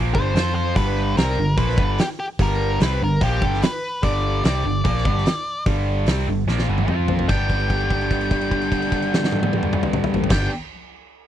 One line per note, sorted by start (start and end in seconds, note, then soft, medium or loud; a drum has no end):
0.00 0.13 A#1 loud
0.00 0.15 A#2 medium
0.00 0.15 F3 medium
0.00 0.15 A#3 medium
0.14 0.33 G1 loud
0.14 0.35 G2 medium
0.14 0.34 D3 medium
0.14 0.35 G3 medium
0.14 0.54 C5 medium
0.14 kick loud
0.34 0.73 F2 medium
0.34 0.75 F3 medium
0.34 0.76 C4 medium
0.34 0.76 F4 medium
0.34 snare loud
0.34 open hi-hat medium
0.55 0.76 C5 medium
0.76 1.14 G1 medium
0.76 1.16 G2 medium
0.76 1.16 D3 loud
0.76 1.16 G3 medium
0.76 1.17 B4 loud
0.76 kick medium
0.76 open hi-hat medium
1.16 1.36 C2 medium
1.16 1.37 C3 medium
1.16 1.37 G3 loud
1.16 1.37 C4 loud
1.16 1.58 A#4 medium
1.16 snare loud
1.16 open hi-hat medium
1.37 1.57 G1 medium
1.37 1.54 G2 medium
1.37 1.54 D3 medium
1.57 1.77 A#1 loud
1.57 1.77 A#2 medium
1.57 1.78 F3 loud
1.57 1.78 A#3 loud
1.57 2.00 B4 medium
1.57 kick loud
1.57 open hi-hat medium
1.69 snare soft
1.77 1.97 G1 loud
1.77 1.98 G2 medium
1.77 1.98 D3 medium
1.77 1.98 G3 loud
1.77 kick loud
1.98 2.05 G4 medium
1.98 snare loud
1.98 open hi-hat medium
2.20 2.25 G4 medium
2.39 2.77 G1 medium
2.39 2.80 G2 medium
2.39 2.80 D3 loud
2.39 2.80 G3 loud
2.39 2.79 A#4 loud
2.39 kick loud
2.39 open hi-hat medium
2.80 3.00 C2 loud
2.80 3.00 C3 medium
2.80 3.01 G3 medium
2.80 3.01 C4 loud
2.80 3.03 B4 medium
2.80 snare loud
2.80 open hi-hat medium
3.01 3.20 G1 medium
3.01 3.18 G2 medium
3.01 3.18 D3 medium
3.01 3.22 A#4 medium
3.21 3.40 A#1 loud
3.21 3.41 A#2 medium
3.21 3.42 F3 medium
3.21 3.42 A#3 medium
3.21 3.64 G4 medium
3.21 kick loud
3.21 open hi-hat medium
3.41 3.61 G1 loud
3.41 3.61 G2 medium
3.41 3.62 D3 loud
3.41 3.62 G3 loud
3.41 kick loud
3.54 snare soft
3.62 4.05 B4 loud
3.62 snare loud
3.62 open hi-hat medium
4.03 4.41 G1 loud
4.03 4.43 G2 medium
4.03 4.43 D3 loud
4.03 4.43 G3 loud
4.03 4.44 D5 loud
4.03 kick medium
4.03 open hi-hat medium
4.44 4.63 C2 loud
4.44 4.64 C3 loud
4.44 4.64 G3 loud
4.44 4.64 C4 loud
4.44 5.63 D5 loud
4.44 snare loud
4.44 open hi-hat medium
4.64 4.83 G1 medium
4.64 4.80 G2 medium
4.64 4.81 D3 medium
4.84 5.04 A#1 loud
4.84 5.04 A#2 medium
4.84 5.05 F3 medium
4.84 5.05 A#3 loud
4.84 kick loud
4.84 open hi-hat medium
4.97 snare soft
5.05 5.24 G1 loud
5.05 5.25 G2 loud
5.05 5.25 D3 medium
5.05 5.26 G3 loud
5.05 kick loud
5.18 snare soft
5.26 snare loud
5.26 open hi-hat medium
5.66 6.04 G1 medium
5.66 6.06 G2 medium
5.66 6.07 D3 medium
5.66 6.07 G3 loud
5.66 kick loud
5.66 open hi-hat medium
6.06 6.26 C2 loud
6.06 6.27 C3 loud
6.06 6.27 G3 loud
6.06 6.28 C4 loud
6.06 snare loud
6.06 open hi-hat medium
6.27 6.46 G1 medium
6.27 6.44 G2 medium
6.27 6.44 D3 medium
6.47 6.66 A#1 loud
6.47 6.68 A#2 medium
6.47 6.68 F3 medium
6.47 6.68 A#3 loud
6.47 snare medium
6.59 snare medium
6.68 6.87 G1 loud
6.68 6.88 G2 medium
6.68 6.88 D3 medium
6.68 6.89 G3 loud
6.78 high tom medium
6.88 7.26 F2 medium
6.88 7.28 F3 medium
6.88 7.29 C4 medium
6.88 7.29 F4 medium
6.88 mid tom medium
7.08 floor tom loud
7.19 floor tom medium
7.28 10.22 G1 medium
7.28 10.29 G2 medium
7.28 10.30 D3 medium
7.28 10.31 G3 loud
7.28 10.32 B3 medium
7.28 10.32 D4 loud
7.28 10.22 G5 medium
7.28 kick medium
7.28 crash medium
7.32 10.33 G4 loud
7.50 kick medium
7.50 crash soft
7.60 crash soft
7.70 kick medium
7.70 crash soft
7.80 crash soft
7.90 kick medium
7.90 crash soft
8.01 crash soft
8.11 kick medium
8.11 crash soft
8.21 crash soft
8.31 kick medium
8.31 crash soft
8.41 crash medium
8.51 kick medium
8.51 crash medium
8.61 crash medium
8.72 kick medium
8.72 crash medium
8.82 crash medium
8.92 kick medium
8.92 crash soft
9.02 crash medium
9.14 snare medium
9.24 snare medium
9.32 high tom medium
9.43 high tom medium
9.53 high tom loud
9.63 mid tom medium
9.73 mid tom medium
9.83 mid tom medium
9.93 mid tom loud
10.04 mid tom loud
10.14 floor tom loud
10.24 floor tom loud
10.29 10.48 G1 medium
10.29 10.48 G2 medium
10.29 10.49 D3 medium
10.29 10.49 G3 loud
10.29 10.50 B3 loud
10.29 10.50 D4 loud
10.29 10.50 G4 loud
10.29 10.48 G5 medium
10.29 kick loud
10.29 snare loud
10.29 crash loud